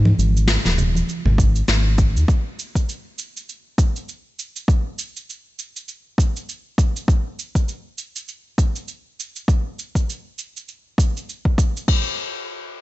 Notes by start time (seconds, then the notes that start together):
Already playing: G#2
0.05 high conga
0.18 G#1, cabasa
0.37 cabasa
0.48 snare, cabasa
0.65 D#1, snare, high conga
0.78 low conga, cabasa
0.95 high conga, cabasa
1.09 cabasa
1.25 G#1, low conga
1.38 kick, cabasa
1.56 cabasa
1.68 G#1, snare, cabasa
1.98 kick, cabasa
2.16 D#2, cabasa
2.28 kick, cabasa
2.59 cabasa
2.75 kick, cabasa
2.89 cabasa
3.18 cabasa
3.37 cabasa
3.49 cabasa
3.78 kick, cabasa
3.96 cabasa
4.09 cabasa
4.39 cabasa
4.56 cabasa
4.68 kick, cabasa
4.99 cabasa
5.17 cabasa
5.30 cabasa
5.59 cabasa
5.76 cabasa
5.88 cabasa
6.18 kick, cabasa
6.36 cabasa
6.49 cabasa
6.78 kick, cabasa
6.96 cabasa
7.08 kick, cabasa
7.39 cabasa
7.55 kick, cabasa
7.68 cabasa
7.98 cabasa
8.16 cabasa
8.28 cabasa
8.58 kick, cabasa
8.76 cabasa
8.88 cabasa
9.20 cabasa
9.36 cabasa
9.48 kick, cabasa
9.79 cabasa
9.95 kick, cabasa
10.10 cabasa
10.39 cabasa
10.57 cabasa
10.68 cabasa
10.98 kick, cabasa
11.17 cabasa
11.29 cabasa
11.45 kick
11.58 kick, cabasa
11.77 cabasa
11.88 kick, crash